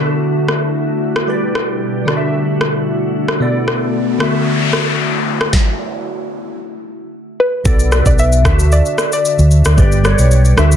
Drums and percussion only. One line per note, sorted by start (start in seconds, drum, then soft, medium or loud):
0.48 cross-stick medium
1.16 cross-stick medium
1.55 cross-stick medium
2.08 cross-stick medium
2.61 cross-stick medium
3.28 cross-stick medium
3.68 cross-stick medium
4.20 cross-stick loud
4.73 cross-stick medium
5.41 cross-stick loud
5.53 kick loud
5.53 snare medium
7.65 kick loud
7.65 shaker medium
7.79 shaker medium
7.92 cross-stick medium
7.92 shaker medium
8.06 kick medium
8.06 shaker medium
8.19 shaker medium
8.32 shaker medium
8.45 kick loud
8.45 cross-stick loud
8.45 shaker medium
8.59 shaker loud
8.72 shaker medium
8.86 shaker soft
8.98 cross-stick medium
8.98 shaker medium
9.12 shaker medium
9.25 shaker medium
9.39 shaker medium
9.51 shaker medium
9.65 cross-stick loud
9.65 shaker loud
9.78 kick loud
9.78 shaker medium
9.92 shaker medium
10.05 cross-stick medium
10.05 shaker medium
10.19 shaker medium
10.31 shaker medium
10.45 shaker medium
10.58 cross-stick loud
10.58 shaker medium
10.72 shaker medium